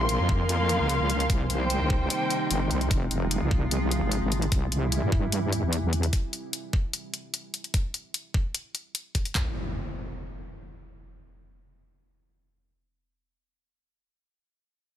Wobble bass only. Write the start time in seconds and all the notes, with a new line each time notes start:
Already playing: A#1
0.19 F2
0.80 C#2
1.00 C#2
1.30 C2
1.50 C2
1.80 C#2
2.50 G1
2.71 C2
2.91 F1
3.11 F1
3.42 C2
4.02 G#1
4.22 G#1
4.52 C2
4.72 C2
5.03 G2
5.63 E2
5.83 E2